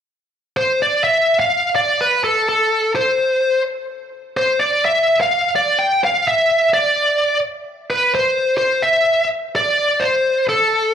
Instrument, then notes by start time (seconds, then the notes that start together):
lead electric guitar
0.57 C5
0.82 D5
1.04 E5
1.40 F5
1.75 D5
2.01 B4
2.24 A4
2.49 A4
2.96 C5
4.37 C5
4.59 D5
4.85 E5
5.21 F5
5.56 D5
5.79 G5
6.04 F5
6.28 E5
6.74 D5
7.90 B4
8.15 C5
8.57 C5
8.82 E5
9.56 D5
10.00 C5
10.49 A4